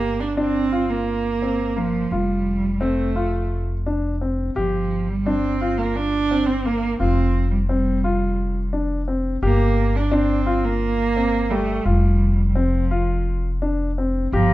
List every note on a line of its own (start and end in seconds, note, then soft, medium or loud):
0.00 2.07 G1 medium
0.00 0.22 A#3 medium
0.00 0.23 G4 medium
0.20 0.37 D4 medium
0.37 0.91 C4 medium
0.37 0.65 D4 medium
0.72 1.27 F4 medium
0.89 1.79 A#3 medium
1.42 1.70 C4 medium
1.76 2.15 F3 medium
1.76 2.04 A#3 medium
2.11 4.52 F1 medium
2.11 2.83 G3 medium
2.11 2.66 F4 medium
2.81 3.60 A3 medium
2.81 3.08 C4 medium
3.16 3.71 F4 medium
3.86 4.14 D4 medium
4.21 4.49 C4 medium
4.55 6.96 G1 medium
4.55 5.10 F3 medium
4.55 5.11 G4 medium
5.09 5.27 G3 medium
5.26 5.79 C4 medium
5.26 5.54 D4 medium
5.61 6.16 F4 medium
5.78 5.97 A#3 medium
5.96 6.48 D4 medium
6.31 6.59 C4 medium
6.47 6.67 C4 medium
6.66 6.98 A#3 medium
6.66 6.93 A#3 medium
6.99 9.38 F1 medium
6.99 7.48 C4 medium
6.99 7.54 F4 medium
7.50 7.59 G3 medium
7.68 8.68 G3 medium
7.68 7.97 C4 medium
8.04 8.59 F4 medium
8.73 9.00 D4 medium
9.08 9.35 C4 medium
9.42 11.81 G1 medium
9.42 9.97 A#3 medium
9.42 9.97 G4 medium
9.96 10.14 D4 medium
10.11 10.66 C4 medium
10.11 10.39 D4 medium
10.46 11.01 F4 medium
10.65 11.52 A#3 medium
11.16 11.44 C4 medium
11.50 11.78 G3 medium
11.50 11.86 A3 medium
11.85 14.28 F1 medium
11.85 12.47 G3 medium
11.85 12.41 F4 medium
12.48 12.57 G3 soft
12.55 13.35 F3 medium
12.55 12.83 C4 medium
12.91 13.47 F4 medium
13.62 13.90 D4 medium
13.98 14.26 C4 medium
14.32 14.54 G1 medium
14.32 14.54 F3 medium
14.32 14.54 G4 medium
14.32 14.54 F5 medium
14.32 14.54 A#5 medium